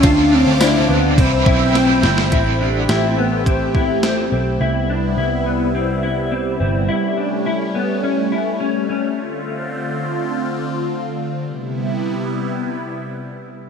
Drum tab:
RD |x---x---x---x---|----------------|----------------|----------------|
HH |----------------|x---x---x---x---|----------------|----------------|
TB |----x-----------|----------------|----------------|----------------|
SD |----o-------o-oo|----o-------o---|----------------|----------------|
BD |o-------o-o-----|o-------o-o-----|----------------|----------------|

RD |----------------|----------------|
HH |----------------|----------------|
TB |----------------|----------------|
SD |----------------|----------------|
BD |----------------|----------------|